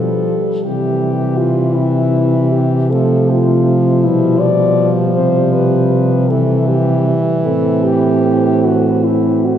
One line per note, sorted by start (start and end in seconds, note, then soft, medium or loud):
0.00 0.39 B2 soft
0.00 0.35 F3 soft
0.00 2.59 G3 soft
0.00 0.65 A4 soft
0.65 4.06 C3 soft
0.65 2.93 E3 soft
0.65 1.40 G4 soft
1.38 1.76 F4 soft
1.74 2.51 E4 soft
2.52 2.91 G4 soft
2.90 6.31 F3 soft
2.90 4.08 A3 soft
2.90 3.32 A4 medium
3.30 4.06 F4 soft
4.04 5.16 B2 soft
4.04 7.46 G3 soft
4.04 4.41 E4 medium
4.40 4.89 D5 medium
5.15 7.13 C3 soft
5.15 5.54 C5 medium
5.53 6.30 B4 soft
6.29 9.58 E3 soft
6.29 6.68 A4 medium
6.68 7.06 G4 medium
7.44 9.58 A2 soft
7.44 9.54 C4 soft
7.44 7.86 A4 medium
7.84 8.66 G4 medium
8.64 9.05 F#4 medium
9.04 9.47 E4 soft
9.45 9.58 F#4 soft